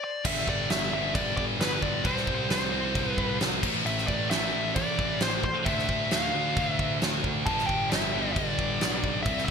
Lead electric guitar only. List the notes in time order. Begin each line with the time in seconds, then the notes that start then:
0.04 D5
0.26 E5
0.49 D5
0.71 E5
0.93 E5
1.15 D5
1.37 D5
1.61 B4
1.82 D5
2.05 C5
2.51 C5
3.09 B4
3.86 E5
4.07 D5
4.30 E5
4.75 D5
5.22 C5
5.45 C5
5.65 E5
6.13 F5
6.71 E5
7.46 A5
7.66 G5
7.90 E5
8.32 D5
9.23 E5
9.45 E5